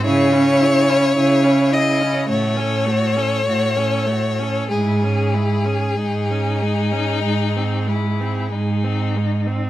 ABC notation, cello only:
X:1
M:4/4
L:1/8
Q:1/4=48
K:C#m
V:1 name="Cello" clef=bass
C,2 C,2 A,,2 A,,2 | G,,2 G,,2 G,,2 G,,2 |]